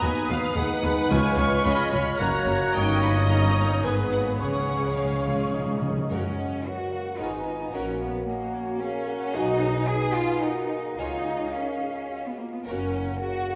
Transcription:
Already playing: bassoon B3, french horn section B3 D#4, trumpet section B4, clarinet B4, flute section D#6
0.02 cello section D#2, double bass section D#2, viola section B3 F#4, violin section B4 G#5
0.29 cello section D#2, double bass section D#2, viola section B3 F#4, violin section F5
0.55 cello section D#2, double bass section D#2, french horn section G#3 D#4, bassoon G#3, viola section B3 G#4, trumpet section B4, violin section F#5
0.83 cello section D#2, double bass section D#2, viola section B3 G#4
1.09 cello section C#2, double bass section C#2, timpani C#3, french horn section G#3 F4, viola section C#4 F4, clarinet C#5, trumpet section C#5, violin section G#5, flute section F6
1.36 cello section C#2, double bass section C#2, viola section C#4 F4, violin section C#6
1.64 cello section C#2, double bass section C#2, french horn section G#3 F4, viola section C#4 F4, trumpet section C#5, violin section D#5 B5
1.92 cello section C#2, double bass section C#2, viola section C#4 F4, violin section C#5
2.19 double bass section F#1, cello section F#2, bassoon A#3, french horn section A#3 F#4, viola section C#4 F#4, trumpet section C#5, violin section A#5, flute section F#6
2.46 double bass section F#1, cello section F#2, viola section C#4 F#4
2.73 double bass section G1, cello section G2, french horn section A#3 D#4, viola section C#4 D#4, trumpet section C#5, violin section D#5 G5, flute section D#6
3.01 violin section B5
3.28 french horn section A#3 D#4, viola section C#4 D#4, trumpet section C#5, violin section A#5
3.83 double bass section G#1, cello section G#2, bassoon B3, viola section B3 G#4, french horn section B3 D#4, violin section B4 G#5, clarinet B4, trumpet section B4
4.12 french horn section A#3, violin section F#5
4.39 double bass section C#2, timpani C#3, cello section C#3, french horn section G#3 C#4, bassoon C#4, viola section C#4 G#4, clarinet G#4, violin section C#5 F#5, trumpet section C#5, flute section C#6
4.48 timpani C#3
4.56 timpani C#3
4.64 timpani C#3
4.72 timpani C#3
4.80 timpani C#3
4.88 timpani C#3
4.96 timpani C#3, french horn section G#3 C#4, bassoon C#4, viola section C#4 G#4, trumpet section C#5, violin section F5
5.04 timpani C#3
5.12 timpani C#3
5.25 timpani C#3, bassoon F4
5.35 timpani C#3
5.51 timpani C#3, bassoon D#4
5.59 timpani C#3
5.66 timpani C#3
5.74 timpani C#3
5.82 timpani C#3
5.90 timpani C#3
5.97 timpani C#3
6.10 double bass section F#2, timpani F#2, bassoon A#3, cello section C#4, viola section F#4, violin section A#4 C#5, clarinet C#5, flute section F#5
6.38 bassoon G#3
6.65 bassoon F#3, cello section F#4, clarinet A#4, french horn section B4, flute section F#5
6.92 bassoon A#3, french horn section A#4
7.18 double bass section G#1, bassoon B3, cello section D#4, viola section F4, french horn section G#4, clarinet B4, violin section B4 C#5, flute section G#5
7.46 bassoon B3, french horn section F4
7.72 double bass section A#1, bassoon A#3, cello section C#4, french horn section F#4, viola section F#4, violin section A#4 C#5, clarinet C#5, flute section F#5
8.00 cello section B3
8.27 cello section A#3, bassoon C#4, clarinet D#5, flute section F#5
8.54 clarinet C#5
8.79 bassoon A#3, cello section C#4, french horn section G#4, clarinet C#5, flute section F5
9.07 french horn section A#4, flute section F#5
9.33 double bass section B1, bassoon G#3, cello section D#4, french horn section F#4, viola section F#4, violin section G#4 D#5, clarinet B4, flute section G#5
9.61 bassoon F#3, french horn section G#4
9.88 bassoon B3, french horn section D#4, cello section G#4
10.16 cello section F4
10.42 bassoon A#3, cello section D#4, french horn section F#4, clarinet D#5, flute section F#5
10.70 french horn section G#4
10.97 double bass section C#2, bassoon G#3, cello section D#4, french horn section F4, viola section F4, violin section G#4 C#5, clarinet C#5, flute section F5
11.53 cello section C#4, french horn section A#4
11.82 french horn section G#4
12.09 french horn section F#4
12.26 cello section B3
12.38 cello section A#3, french horn section F4
12.53 cello section B3
12.65 double bass section F#1, bassoon A#3, cello section C#4, viola section F#4, french horn section A#4, violin section A#4 C#5, clarinet C#5, flute section F#5
13.20 cello section F#4, french horn section G#4
13.48 french horn section A#4

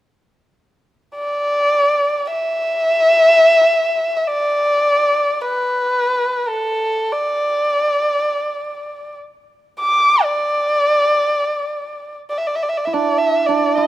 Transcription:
1.16 erhu D5
2.31 erhu E5
4.16 erhu E5
4.27 erhu D5
5.42 erhu B4
6.48 erhu A4
7.13 erhu D5
9.81 erhu D6
10.23 erhu D5
12.30 erhu D5
12.38 erhu E5
12.47 erhu D5
12.55 erhu E5
12.63 erhu D5
12.69 erhu E5
12.77 erhu D5
12.85 hammered dulcimer E4, erhu E5
12.93 hammered dulcimer D4, erhu D5
13.18 erhu E5
13.46 hammered dulcimer D4, erhu D5
13.76 hammered dulcimer E4, erhu E5

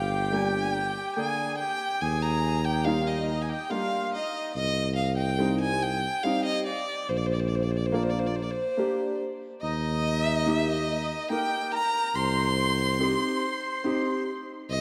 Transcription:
Already playing: tuba G1, accordion G4, violin G5
0.31 upright piano G3 A#3 D4
1.16 upright piano D3 A#3 D4, accordion G#4, violin G#5
1.58 accordion G4, violin G5
2.01 tuba D#2, accordion G#4, violin G#5
2.22 violin A#5
2.65 accordion G4, violin G5
2.85 upright piano G3 A#3 D#4, accordion F4, violin F5
3.06 accordion D#4, violin D#5
3.42 violin G#5
3.48 accordion G4, violin G5
3.70 upright piano G3 A#3 D4, accordion F4, violin F5
4.13 accordion D#4, violin D#5
4.54 tuba C2, violin D#5
4.96 violin F5
5.17 violin G5
5.38 upright piano G3 C4 D#4
5.61 violin G#5
5.82 violin G5
6.23 upright piano G3 C4 D#4, violin F5
6.45 violin D#5
6.67 violin D5
7.09 tuba A#1, violin C5
7.17 violin D5
7.26 violin C5
7.33 violin D5
7.40 violin C5
7.48 violin D5
7.55 violin C5
7.63 violin D5
7.71 violin C5
7.77 violin D5
7.86 violin C5
7.92 upright piano A#3 D4 F4, violin D5
8.03 violin C5
8.10 violin D5
8.19 violin C5
8.27 violin D5
8.35 violin C5
8.42 violin D5
8.51 violin C5
8.77 upright piano A#3 D4 G4
9.61 tuba D#2, accordion D#4, violin D#5
10.20 violin E5
10.36 violin D#5
10.46 upright piano A#3 D#4 G4
10.53 violin E5
10.69 violin D#5
11.30 upright piano A#3 D#4 A#4, accordion G4, violin G5
11.72 accordion A#4, violin A#5
12.15 tuba C2, accordion C5, violin C6
12.99 upright piano C4 D#4 G4
13.84 upright piano C4 D#4 G4
14.70 tuba C2, violin D#5

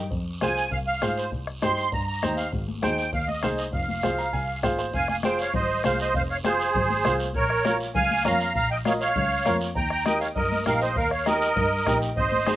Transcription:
0.11 double bass F2, bombo low, high conga, long guiro
0.41 double bass C2, upright piano F4 G#4 C5, accordion G#5, bombo rim, high conga, short guiro
0.57 short guiro
0.72 double bass C2, accordion F5, bombo low, high conga, long guiro
0.87 accordion F5
1.01 double bass G#2, upright piano F4 G#4 C5, bombo rim, high conga, short guiro
1.17 accordion C5, short guiro
1.32 double bass C2, bombo low, high conga, long guiro
1.47 bombo rim
1.62 double bass G2, upright piano D#4 G4 C5, accordion C6, bombo rim, high conga, short guiro
1.77 short guiro
1.92 double bass G2, accordion A#5, bombo low, high conga, long guiro
2.07 accordion A#5
2.22 double bass D#2, upright piano D#4 G4 C5, bombo rim, high conga, short guiro
2.37 accordion F5, short guiro
2.52 double bass G#1, bombo low, high conga, long guiro
2.68 high conga
2.83 double bass D#2, upright piano D#4 G#4 C5, accordion G5, bombo rim, high conga, short guiro
2.98 short guiro
3.13 double bass D#2, accordion F5, bombo low, high conga, long guiro
3.28 accordion D#5, high conga
3.42 double bass C2, upright piano D#4 G#4 C5, accordion F5, bombo rim, high conga, short guiro
3.58 accordion D#5, short guiro
3.73 double bass F1, accordion F5, bombo low, high conga, long guiro
3.89 high conga
4.03 double bass C2, upright piano F4 G#4 C5, bombo rim, high conga, short guiro
4.18 upright piano A#5, short guiro
4.33 double bass C2, upright piano G#5, bombo low, high conga, long guiro
4.63 double bass G#1, upright piano F4 G#4 C5 F5, bombo low, bombo rim, high conga, short guiro
4.78 upright piano C5, short guiro
4.93 double bass F1, accordion F5 G#5, bombo low, high conga, long guiro
5.08 accordion F5 G#5, bombo rim, high conga
5.23 upright piano F4 G#4 C5, accordion C5 G5, bombo rim, high conga, short guiro
5.39 accordion C#5 F5, short guiro
5.54 double bass G#1, accordion C5 D#5, bombo low, high conga, low conga, long guiro
5.84 double bass C2, upright piano F4 G#4 C5, accordion C5 F5, bombo rim, high conga, short guiro
5.99 accordion C5 D#5, short guiro
6.14 double bass F1, accordion C5 F5, bombo low, high conga, long guiro
6.30 accordion C#5 F5
6.44 upright piano F4 G#4 C5, accordion G#4 C5, bombo rim, high conga, short guiro
6.60 short guiro
6.75 double bass G#1, bombo low, high conga, low conga, long guiro
6.90 high conga
7.05 double bass C2, upright piano F4 G#4 C5, bombo rim, high conga, short guiro
7.20 short guiro
7.35 double bass A#1, accordion A#4 C#5, bombo low, high conga, long guiro
7.50 bombo rim
7.65 upright piano F4 A#4 C#5, bombo rim, high conga, short guiro
7.80 short guiro
7.95 double bass C#2, accordion F5 G#5, bombo low, high conga, low conga, long guiro
8.10 high conga
8.25 double bass F2, upright piano F4 A#4 C#5, accordion F5 A#5, bombo rim, high conga, low conga, short guiro
8.40 short guiro
8.55 double bass A#1, accordion F5 A#5, bombo low, high conga, long guiro
8.71 accordion D#5 G5
8.85 upright piano F4 A#4 D#5, accordion C#5 F5, bombo rim, high conga, short guiro
9.00 accordion C#5 F5, short guiro
9.15 double bass C#2, bombo low, high conga, low conga, long guiro
9.46 double bass F2, upright piano F4 A#4 C#5, bombo rim, high conga, short guiro
9.61 short guiro
9.76 double bass D#2, accordion G5 A#5, bombo low, high conga, long guiro
9.90 accordion G5 A#5, bombo rim
10.05 upright piano D#4 G4 A#4, accordion D#5 G5, bombo rim, high conga, short guiro
10.20 accordion C#5 F5, short guiro
10.35 double bass G2, accordion A#4 D#5, bombo low, high conga, low conga, long guiro
10.52 high conga
10.66 double bass A#1, upright piano D#4 G4 A#4, accordion A#4 F5, bombo rim, high conga, short guiro
10.81 accordion C5 D#5, short guiro
10.96 double bass D#2, accordion A#4 F5, bombo low, high conga, long guiro
11.11 accordion C#5 F5, bombo rim
11.26 upright piano D#4 G4 A#4, accordion A#4 D#5, bombo rim, high conga, short guiro
11.42 short guiro
11.56 double bass G2, bombo low, high conga, low conga, long guiro
11.86 double bass A#1, upright piano D#4 G4 A#4, bombo low, bombo rim, high conga, short guiro
12.02 short guiro
12.16 double bass G#1, accordion C5 D#5, bombo low, high conga, long guiro
12.32 high conga
12.47 upright piano D#4 G#4 C5, bombo rim, high conga, short guiro

